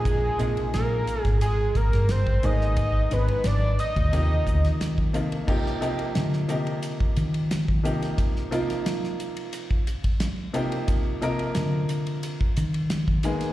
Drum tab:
CC |----------------|----------------|x---------------|----------------|
RD |x-xxx-xxx-xxx-x-|x-xxx-xxx-xxx-xx|--xxx-xxx-xxx-xx|x-xxx-xxx-xxx-xx|
HH |p-p-p-p-p-p-p-p-|p-p-p-p-p-p-p-p-|--p-p-p-p-p-p-p-|p-p-p-p-p-p-p-p-|
SD |----o--o--ooo--o|--o-o------oo---|-o--oo------o--o|-o-ooo------o---|
BD |o------o--o--o--|o------o--o--o--|o--------o---o--|o--------o-o----|

CC |----------------|
RD |x-xxx-xxx-xxx-xx|
HH |p-p-p-p-p-p-p-p-|
SD |----o-------o--o|
BD |o--------o---o--|